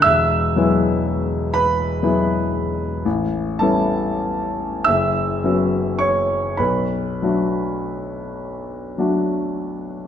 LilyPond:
<<
  \new Staff \with { instrumentName = "Grand piano" } { \time 6/8 \key b \dorian \tempo 4. = 35 <e'' e'''>4. <b' b''>4. | r8 <a' a''>4 <e'' e'''>4 <cis'' cis'''>8 | <b' b''>4. r4. | }
  \new Staff \with { instrumentName = "Grand piano" } { \time 6/8 \key b \dorian e,,8 <fis gis b e'>4. <fis gis b e'>4 | a,,8 <g b cis' e'>4 fis,,8 <fis b cis' fis'>4 | b,,8 <fis a d' fis'>4. <fis a d' fis'>4 | }
>>